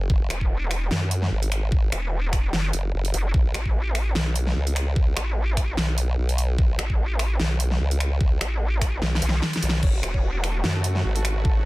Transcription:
0.10 F#1, kick
0.30 E1, finger snap, closed hi-hat
0.41 kick
0.71 finger snap, open hi-hat
0.91 F#2, snare
1.11 closed hi-hat
1.22 snare
1.31 G#1
1.43 closed hi-hat
1.52 finger snap, closed hi-hat
1.72 kick
1.92 E1, finger snap, closed hi-hat
2.33 finger snap, kick, open hi-hat
2.53 F#1, snare
2.73 F#1, closed hi-hat
2.94 F#1
3.05 closed hi-hat
3.14 F#1, closed hi-hat
3.34 B1, kick
3.54 A1, finger snap, closed hi-hat
3.66 kick
3.95 finger snap, open hi-hat
4.15 B1, snare
4.36 closed hi-hat
4.47 snare
4.56 C#2
4.67 closed hi-hat
4.76 finger snap, closed hi-hat
4.96 kick
5.17 A1, finger snap, closed hi-hat
5.57 finger snap, kick, open hi-hat
5.77 B1, snare
5.98 closed hi-hat
6.18 B1
6.29 closed hi-hat
6.38 closed hi-hat
6.58 B1, kick
6.79 A1, finger snap, closed hi-hat
6.90 kick
7.19 finger snap, open hi-hat
7.40 B1, snare
7.60 closed hi-hat
7.71 snare
7.80 C#2
7.91 closed hi-hat
8.00 finger snap, closed hi-hat
8.21 kick
8.41 A1, finger snap, closed hi-hat
8.81 finger snap, kick, open hi-hat
9.02 B1, snare
9.15 snare
9.22 B1, closed hi-hat
9.29 snare
9.42 snare
9.53 snare, closed hi-hat
9.62 B1, closed hi-hat
9.69 snare
9.83 F#1 C#3 A3 F#4 C#5, kick, crash
9.94 F#4
10.03 E1 F#4, finger snap, closed hi-hat
10.14 C#5, kick
10.23 F#4
10.34 F#4
10.44 A4, finger snap, open hi-hat
10.55 F#4
10.64 F#2 F#4, snare
10.75 A4
10.84 F#4, closed hi-hat
10.95 F#4, snare
11.04 G#1 F#4
11.16 A4, closed hi-hat
11.25 F#4, finger snap, closed hi-hat
11.36 F#4
11.45 A4, kick
11.56 C#4

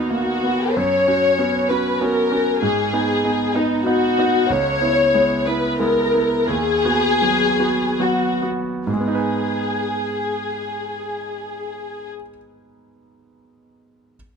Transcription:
Already playing: D#2 B3 D#4 F#4 F#5 G#5
0.11 A#3 F#4
0.44 B3
0.76 F#2 C#5
1.08 C#4 F#4
1.38 B3 C#4 F#4
1.69 C#4 F#4 B4
2.00 B3 C#4 F#4 A#4
2.32 C#4 F#4
2.62 G#2 G#4
2.93 B3 D#4
3.24 B3 D#4
3.55 B3 D#4
3.86 B3 D#4 F#4
4.18 B3 D#4
4.50 C#2 C#5
4.81 B3 E4
5.14 G#3 B3 E4
5.47 B3 E4 B4
5.79 G#3 B3 E4 A#4
6.14 B3 E4
6.48 D#2 G#4
6.85 B3 F#4
7.22 F#3 B3 F#4
7.59 B3 F#4
7.99 F#3 B3 F#4
8.42 B3 F#4
8.87 G#2 G#4
8.93 G#3
9.00 B3
9.08 D#4
9.15 B4

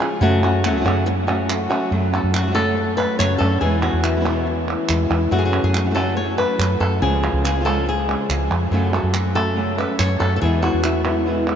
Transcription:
Already playing: F3 G#3 C#4 F4
0.00 C#4 F4 G#4, clap
0.21 F#2 C#3 F#3 A3 C#4 F#4
0.43 A3 C#4 F#4, clap
0.64 F#3 A3 C#4 F#4, clap
0.72 C#2 F#3 A3 C#4 F#4
0.76 F#3 A3 C#4 F#4
0.81 F#2 F#3 A3 C#4 F#4
0.85 C#3 F#3 A3 C#4 F#4, clap
1.06 muted nylon-string guitar stroke
1.27 A3 C#4 F#4, clap
1.48 F#3 A3 C#4 F#4, clap
1.70 A3 C#4 F#4, clap
1.91 F#2 C#3 F#3 A3 C#4 F#4
2.13 A3 C#4 F#4 A4, clap
2.23 F#2
2.34 F#4, clap
2.42 F#3 A3 C#4 F#4
2.47 F#3 A3 C#4 F#4
2.51 F#3 A3 C#4 F#4 A4
2.56 C#3 F#3 A3 C#4 F#4, clap
2.77 muted nylon-string guitar stroke
2.97 B4, clap
3.19 F#2 C#3 F#3 A3 C#4 F#4 C#5, clap
3.38 F#2 D3 C#4 F#4 A4, clap
3.42 A3
3.61 E2 B2 E3 G#3 B3 E4 G#4
3.82 G#3 B3 E4 F#4, clap
3.93 E2
4.03 E4, clap
4.16 E3 G#3 B3 E4
4.20 E3 G#3 B3 E4
4.25 B2 E3 G#3 B3 E4, clap
4.46 muted nylon-string guitar stroke
4.68 clap
4.88 E2 E3 G#3 B3 E4, clap
5.10 E2 G#3 B3 E4, clap
5.31 F#2 C#3 F#3 A3 C#4 F#4
5.39 G#4
5.45 F#4
5.53 clap
5.63 F#2 G#4
5.74 A3 C#4 F#4, clap
5.85 F#3 A3 C#4 F#4
5.90 F#3 A3 C#4 F#4
5.94 C#3 F#3 A3 C#4 F#4 A4, clap
6.16 C#5, muted nylon-string guitar stroke
6.37 A3 C#4 F#4 B4, clap
6.58 F#2 F#3 A3 C#4 F#4, clap
6.80 F#2 A4, clap
7.01 C#2 C#3 F3 G#3 C#4 F4 G#4
7.23 F4, clap
7.33 C#2
7.44 G#3 C#4 F4 G#4, clap
7.56 F3 G#3 C#4 F4
7.60 F3 G#3 C#4 F4
7.65 C#3 F3 G#3 C#4 F4 A4, clap
7.86 G#4, muted nylon-string guitar stroke
8.08 G#3 C#4 F4, clap
8.29 C#2 F3 G#3 C#4 F4, clap
8.50 F2, clap
8.71 F#2 C#3 F#3 A3 C#4 F#4 A4
8.92 A3 C#4 F#4 A4, clap
9.03 F#2
9.14 F#4, muted nylon-string guitar stroke, clap
9.35 A3 C#4 F#4 A4, clap
9.56 C#3 F#3 A3 C#4 F#4
9.77 A3 C#4 F#4 B4, clap
9.98 F#2 C#5, muted nylon-string guitar stroke, clap
10.19 F#2 A3 C#4 F#4 A4, clap
10.36 B2 A4
10.41 E2 E3 G#3 B3 E4 G#4
10.62 G#3 B3 E4 F#4, clap
10.74 E2
10.84 E4, muted nylon-string guitar stroke, clap
11.05 G#3 B3 E4, clap
11.26 B2 E3 G#3 B3 E4
11.47 G#3 B3 E4, clap

